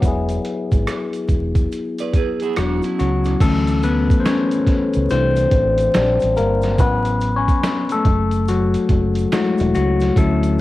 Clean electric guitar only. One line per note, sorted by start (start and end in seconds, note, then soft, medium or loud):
2.00 2.14 B4 medium
2.00 2.14 D5 medium
2.15 2.40 G#4 medium
2.15 2.40 B4 medium
2.42 2.56 E4 medium
2.42 2.56 G#4 medium
2.57 2.82 D4 medium
2.57 2.82 F#4 medium
2.84 3.38 C#4 medium
2.84 3.38 E4 medium